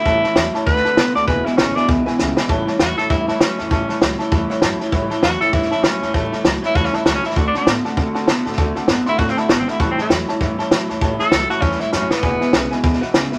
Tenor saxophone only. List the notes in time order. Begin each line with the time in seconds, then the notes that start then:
Already playing: E4
0.66 B4
1.15 D5
1.27 B4
1.45 E4
1.57 C#4
1.75 D4
2.80 F#4
2.97 A4
3.10 E4
3.28 E4
3.41 C#4
3.72 C#4
5.23 F#4
5.41 A4
5.54 E4
5.72 E4
5.84 C#4
6.14 A3
6.65 E4
6.76 F#4
6.85 C#4
6.95 E4
7.05 F#4
7.15 C#4
7.26 E4
7.37 F#4
7.47 D4
7.57 D4
9.09 E4
9.19 F#4
9.29 C4
9.39 E4
9.50 F#4
9.59 C4
9.70 E4
9.80 F#4
9.91 C4
10.01 A3
11.20 A4
11.50 F#4
11.61 C#4
11.80 E4
11.93 C#4
12.10 B3